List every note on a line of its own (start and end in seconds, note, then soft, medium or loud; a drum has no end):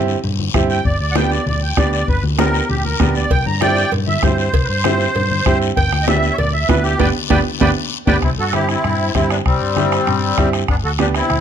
0.00 0.14 G2 medium
0.00 0.15 C4 medium
0.00 0.15 E4 medium
0.00 0.15 G4 loud
0.08 short guiro medium
0.24 0.48 G2 medium
0.24 high conga soft
0.24 low conga medium
0.24 long guiro medium
0.39 high conga medium
0.54 0.79 G2 medium
0.54 0.76 C4 medium
0.54 0.76 E4 medium
0.54 0.76 G4 medium
0.54 bombo low medium
0.54 bombo rim medium
0.54 high conga medium
0.54 low conga medium
0.54 short guiro medium
0.70 0.85 G5 medium
0.70 short guiro medium
0.85 0.97 G1 loud
0.85 0.98 D5 medium
0.85 bombo low medium
0.85 high conga soft
0.85 long guiro medium
1.00 1.37 D2 medium
1.00 1.15 D5 medium
1.11 1.14 F#5 medium
1.15 1.37 B3 medium
1.15 1.38 D4 medium
1.15 1.38 G4 medium
1.15 1.31 G5 loud
1.15 bombo rim medium
1.15 high conga loud
1.15 short guiro medium
1.31 1.45 D5 medium
1.31 short guiro medium
1.46 1.71 D2 loud
1.46 1.62 D5 medium
1.46 high conga soft
1.46 low conga medium
1.46 long guiro medium
1.62 1.77 G5 medium
1.77 2.02 D2 loud
1.77 1.99 B3 medium
1.77 1.99 D4 medium
1.77 1.99 G4 medium
1.77 1.91 D5 medium
1.77 bombo low medium
1.77 bombo rim medium
1.77 high conga medium
1.77 short guiro medium
1.92 2.07 D5 medium
1.92 short guiro medium
2.08 2.20 G1 medium
2.08 2.23 B4 loud
2.08 bombo low medium
2.08 high conga soft
2.08 low conga medium
2.08 long guiro medium
2.23 2.60 D2 loud
2.23 high conga medium
2.38 2.60 B3 medium
2.38 2.60 D4 medium
2.38 2.61 G4 medium
2.38 2.68 A#4 loud
2.38 bombo rim medium
2.38 high conga loud
2.38 short guiro medium
2.54 short guiro medium
2.69 2.94 D2 medium
2.69 2.84 G4 medium
2.69 high conga soft
2.69 low conga medium
2.69 long guiro medium
2.85 3.15 A#4 medium
2.85 high conga medium
3.00 3.25 D2 medium
3.00 3.21 B3 medium
3.00 3.22 D4 medium
3.00 3.22 G4 medium
3.00 bombo low medium
3.00 bombo rim medium
3.00 high conga medium
3.00 low conga medium
3.00 short guiro medium
3.15 3.31 D5 medium
3.15 short guiro medium
3.30 3.43 C2 medium
3.30 3.46 G5 loud
3.30 bombo low medium
3.30 cowbell loud
3.30 high conga soft
3.30 long guiro medium
3.46 3.83 G2 loud
3.46 3.61 A#5 medium
3.46 high conga medium
3.61 3.83 C4 medium
3.61 3.83 E4 medium
3.61 3.83 G4 medium
3.61 3.90 D5 loud
3.61 3.91 G5 loud
3.61 bombo rim medium
3.61 high conga loud
3.61 short guiro medium
3.77 short guiro medium
3.92 4.17 G2 medium
3.92 cowbell medium
3.92 high conga soft
3.92 low conga medium
3.92 long guiro medium
4.07 4.22 E5 medium
4.07 high conga medium
4.22 4.47 G2 loud
4.22 4.44 C4 medium
4.22 4.44 E4 medium
4.22 4.45 G4 medium
4.22 4.37 C5 medium
4.22 bombo low medium
4.22 bombo rim medium
4.22 high conga medium
4.22 low timbale medium
4.22 short guiro medium
4.38 4.67 C5 medium
4.38 short guiro medium
4.53 4.66 C2 medium
4.53 bombo low medium
4.53 cowbell loud
4.53 high conga soft
4.53 long guiro medium
4.65 4.67 B4 medium
4.69 5.06 G2 medium
4.69 5.58 C5 loud
4.84 5.06 C4 medium
4.84 5.06 E4 medium
4.84 5.06 G4 medium
4.84 bombo rim medium
4.84 high conga loud
4.84 short guiro medium
5.00 short guiro medium
5.15 5.40 G2 medium
5.15 cowbell medium
5.15 high conga soft
5.15 low conga medium
5.15 long guiro medium
5.31 high conga medium
5.46 5.71 G2 medium
5.46 5.67 C4 medium
5.46 5.68 E4 medium
5.46 5.68 G4 loud
5.46 bombo low medium
5.46 bombo rim medium
5.46 high conga medium
5.46 short guiro medium
5.62 short guiro medium
5.76 5.89 G1 loud
5.76 6.06 G5 loud
5.76 bombo low medium
5.76 cowbell loud
5.76 long guiro medium
5.92 6.29 D2 medium
5.92 bombo rim medium
5.92 high conga medium
6.03 6.05 D#5 medium
6.07 6.29 B3 medium
6.07 6.29 D4 medium
6.07 6.29 G4 medium
6.07 6.37 E5 loud
6.07 bombo rim medium
6.07 high conga loud
6.07 short guiro medium
6.23 short guiro medium
6.33 6.36 C#5 medium
6.38 6.63 D2 loud
6.38 6.53 D5 loud
6.38 cowbell medium
6.38 high conga soft
6.38 low conga medium
6.38 long guiro medium
6.53 6.68 E5 medium
6.68 6.94 D2 medium
6.68 6.90 B3 medium
6.68 6.90 D4 medium
6.68 6.91 E4 medium
6.68 6.83 B4 loud
6.68 bombo low medium
6.68 bombo rim medium
6.68 high conga medium
6.68 low timbale medium
6.68 short guiro medium
6.83 6.99 G4 loud
6.83 short guiro medium
6.99 7.11 G1 medium
6.99 7.10 B3 loud
6.99 7.10 D4 loud
6.99 7.10 G4 loud
6.99 7.09 B4 loud
6.99 7.09 D5 loud
6.99 7.09 G5 loud
6.99 bombo low loud
6.99 high conga medium
6.99 high timbale loud
6.99 long guiro loud
7.30 7.42 G1 medium
7.30 7.40 B3 loud
7.30 7.40 D4 loud
7.30 7.40 G4 loud
7.30 7.40 B4 loud
7.30 7.40 D5 loud
7.30 7.40 G5 loud
7.30 bombo low loud
7.30 high conga loud
7.30 high timbale loud
7.30 long guiro loud
7.60 7.72 G1 loud
7.60 7.71 B3 loud
7.60 7.71 D4 loud
7.60 7.71 G4 medium
7.60 7.71 B4 loud
7.60 7.70 D5 loud
7.60 7.70 G5 loud
7.60 bombo low medium
7.60 high conga medium
7.60 high timbale loud
7.60 long guiro loud
8.07 8.19 G1 loud
8.07 8.17 B3 loud
8.07 8.17 D4 loud
8.07 8.17 G4 loud
8.07 8.17 B4 loud
8.07 8.17 D5 loud
8.07 8.17 G5 loud
8.07 bombo low loud
8.07 high conga loud
8.07 high timbale loud
8.07 long guiro loud
8.22 8.35 C2 medium
8.22 8.30 C4 medium
8.22 8.30 E4 loud
8.22 bombo low medium
8.22 bombo rim medium
8.22 high conga soft
8.22 long guiro medium
8.38 8.75 G2 medium
8.38 8.53 F#4 medium
8.38 8.54 A4 loud
8.53 8.75 C4 medium
8.53 8.67 E4 medium
8.53 8.75 E4 medium
8.53 8.67 G4 loud
8.53 8.75 G4 medium
8.53 bombo rim medium
8.53 high conga medium
8.53 short guiro medium
8.69 9.12 C4 medium
8.69 9.12 E4 loud
8.69 bombo rim medium
8.69 short guiro medium
8.84 9.09 G2 medium
8.84 bombo rim medium
8.84 high conga soft
8.84 low conga medium
8.84 long guiro medium
9.15 9.39 G2 medium
9.15 9.36 C4 medium
9.15 9.29 C4 medium
9.15 9.31 E4 loud
9.15 9.36 E4 medium
9.15 9.37 G4 medium
9.15 bombo low medium
9.15 bombo rim medium
9.15 high conga medium
9.15 short guiro medium
9.30 9.37 B3 medium
9.30 9.37 D4 medium
9.30 bombo rim medium
9.30 short guiro medium
9.46 9.58 C2 medium
9.46 10.49 G3 medium
9.46 10.49 C4 loud
9.46 bombo low medium
9.46 bombo rim medium
9.46 high conga soft
9.46 long guiro medium
9.61 9.98 G2 medium
9.76 9.98 C4 medium
9.76 9.98 E4 medium
9.76 9.98 G4 medium
9.76 bombo rim medium
9.76 high conga medium
9.76 short guiro medium
9.92 bombo rim medium
9.92 short guiro medium
10.07 10.32 G2 medium
10.07 bombo rim medium
10.07 high conga soft
10.07 low conga medium
10.07 long guiro medium
10.38 10.62 G2 medium
10.38 10.59 C4 medium
10.38 10.60 E4 medium
10.38 10.60 G4 medium
10.38 bombo low medium
10.38 bombo rim medium
10.38 high conga medium
10.38 short guiro medium
10.53 bombo rim medium
10.53 short guiro medium
10.68 10.81 G1 medium
10.68 10.76 B3 medium
10.68 10.76 D4 medium
10.68 bombo low medium
10.68 bombo rim medium
10.68 high conga soft
10.68 long guiro medium
10.84 11.21 D2 medium
10.84 10.91 F#4 medium
10.84 10.91 A4 medium
10.99 11.21 B3 medium
10.99 11.21 D4 medium
10.99 11.06 D4 medium
10.99 11.21 G4 medium
10.99 11.07 G4 medium
10.99 bombo rim medium
10.99 high conga medium
10.99 short guiro medium
11.15 11.40 C4 medium
11.15 11.40 E4 loud
11.15 bombo rim medium
11.15 short guiro medium
11.30 11.40 D2 medium
11.30 bombo rim medium
11.30 high conga soft
11.30 low conga medium
11.30 long guiro medium